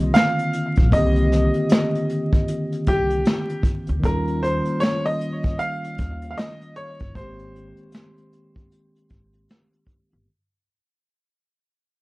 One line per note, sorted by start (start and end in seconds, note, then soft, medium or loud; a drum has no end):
0.00 0.89 D3 medium
0.00 0.86 D#3 medium
0.00 0.87 A#3 medium
0.00 0.88 C4 medium
0.00 0.90 F4 medium
0.14 0.94 F5 medium
0.14 snare medium
0.14 closed hi-hat medium
0.39 closed hi-hat soft
0.53 closed hi-hat medium
0.76 0.90 A#1 medium
0.76 kick medium
0.76 closed hi-hat soft
0.90 1.47 C2 loud
0.90 3.99 D#3 medium
0.90 3.99 A#3 medium
0.90 2.93 D#5 loud
0.90 kick loud
0.90 closed hi-hat medium
0.94 4.01 D3 medium
0.94 4.01 C4 medium
0.94 4.02 G4 medium
1.16 closed hi-hat soft
1.32 snare soft
1.32 closed hi-hat medium
1.54 closed hi-hat soft
1.69 snare loud
1.69 closed hi-hat medium
1.95 closed hi-hat soft
2.09 closed hi-hat medium
2.33 kick medium
2.33 closed hi-hat soft
2.48 closed hi-hat medium
2.72 closed hi-hat soft
2.87 3.21 C2 medium
2.87 3.61 G4 medium
2.87 kick medium
2.87 closed hi-hat medium
3.10 closed hi-hat medium
3.25 snare medium
3.25 closed hi-hat medium
3.49 closed hi-hat soft
3.63 kick medium
3.63 closed hi-hat medium
3.87 4.02 D2 medium
3.87 closed hi-hat soft
4.00 7.09 D#3 medium
4.00 7.10 G3 medium
4.00 7.11 A#3 medium
4.00 kick loud
4.00 closed hi-hat medium
4.04 4.59 D#2 loud
4.04 7.12 C#4 medium
4.04 7.13 F4 medium
4.04 4.44 A#4 medium
4.27 closed hi-hat soft
4.43 4.79 C5 medium
4.43 closed hi-hat medium
4.65 closed hi-hat soft
4.80 5.03 C#5 loud
4.80 snare loud
4.80 closed hi-hat medium
5.06 5.61 D#5 medium
5.06 closed hi-hat soft
5.21 closed hi-hat medium
5.44 kick medium
5.44 closed hi-hat soft
5.59 6.29 F5 loud
5.59 closed hi-hat medium
5.84 closed hi-hat soft
5.98 6.33 D#2 medium
5.98 kick medium
5.98 closed hi-hat medium
6.22 closed hi-hat medium
6.31 6.36 F5 medium
6.38 6.74 D#5 medium
6.38 snare medium
6.38 closed hi-hat medium
6.61 closed hi-hat soft
6.76 7.12 C#5 medium
6.76 closed hi-hat medium
6.99 7.13 G1 medium
6.99 kick medium
6.99 closed hi-hat soft
7.13 7.70 G#1 loud
7.13 10.22 D#3 medium
7.13 10.23 G#3 medium
7.13 10.24 A#3 medium
7.13 9.45 C5 medium
7.13 kick loud
7.13 closed hi-hat medium
7.18 7.25 B3 soft
7.18 10.25 G4 medium
7.25 10.28 C4 medium
7.39 closed hi-hat soft
7.56 closed hi-hat medium
7.77 closed hi-hat soft
7.92 snare loud
7.92 closed hi-hat medium
8.18 closed hi-hat soft
8.33 closed hi-hat medium
8.56 kick medium
8.56 closed hi-hat soft
8.72 closed hi-hat medium
8.96 closed hi-hat soft
9.09 9.44 G#1 medium
9.09 kick medium
9.09 closed hi-hat medium
9.33 closed hi-hat soft
9.49 snare loud
9.49 closed hi-hat medium
9.73 closed hi-hat soft
9.87 kick medium
9.87 closed hi-hat medium
10.10 10.25 G1 medium
10.10 closed hi-hat soft